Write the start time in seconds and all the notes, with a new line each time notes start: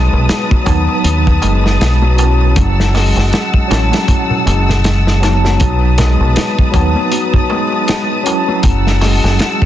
Already playing: F#3 G#3 B3 D#4 B4 A5 D#6
0.13 B1, darbuka tek, darbuka dum
0.29 snare, closed hi-hat, darbuka tek
0.51 F#3, kick
0.63 D#2 F#3 B3 D#4, kick, closed hi-hat, darbuka tek
0.68 A5
0.88 darbuka tek
1.04 D#2 F#3, closed hi-hat, darbuka tek
1.27 kick
1.42 F#1 G#3, closed hi-hat, darbuka tek
1.64 snare, darbuka tek
1.80 B1, snare, closed hi-hat, darbuka tek
2.02 F#3
2.15 F#3 C#4 E4, closed hi-hat, darbuka tek
2.20 A5
2.41 darbuka tek
2.56 F#1 F#3 F#5 A5 E6, kick, closed hi-hat, darbuka tek
2.80 snare
2.94 G#3, snare, open hi-hat, darbuka tek
3.16 F#1, snare, darbuka tek
3.32 snare, closed hi-hat, darbuka tek
3.54 kick
3.68 A1 F#3 C#4 E4, closed hi-hat, darbuka tek
3.72 A5, snare
3.92 F#3, snare, closed hi-hat, darbuka tek
4.08 F#3, kick, closed hi-hat, darbuka tek
4.30 darbuka dum
4.46 F#1 G#3, closed hi-hat, darbuka tek
4.69 snare, darbuka tek, darbuka dum
4.84 snare, closed hi-hat, darbuka tek
5.07 snare
5.20 F#3 B3 D#4, snare, closed hi-hat, darbuka tek
5.25 A5
5.44 F#3, snare, darbuka tek
5.59 B1 F#3 B4 A5 D#6, kick, closed hi-hat, darbuka tek
5.98 G#3, snare, closed hi-hat, darbuka tek, darbuka dum
6.20 B1, darbuka tek, darbuka dum
6.36 snare, closed hi-hat, darbuka tek
6.59 kick
6.71 D#2 F#3 B3 D#4, kick, closed hi-hat, darbuka tek
6.76 A5
6.96 F#3, darbuka tek
7.12 F#3, closed hi-hat, darbuka tek
7.34 kick
7.50 G#3, darbuka tek
7.72 darbuka tek
7.88 snare, closed hi-hat, darbuka tek
8.23 F#3 C#4 E4, closed hi-hat, darbuka tek
8.28 A5
8.48 F#3, darbuka tek
8.63 F#1 F#3 F#5 A5 E6, kick, closed hi-hat, darbuka tek
8.87 snare
9.01 G#3, snare, open hi-hat, darbuka tek
9.23 F#1, snare, darbuka tek
9.39 snare, closed hi-hat, darbuka tek
9.62 kick